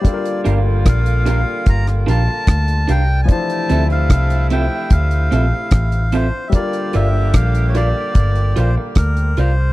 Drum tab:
HH |xxx-xxx-xxx-xxx-|xxxxxxx-xxx-xxx-|xxx-xxx-xxx-xxx-|
SD |----r----r--r---|----r-------r---|----r-------r---|
BD |o---o---o---o---|o---o---o---o---|o---o---o---o---|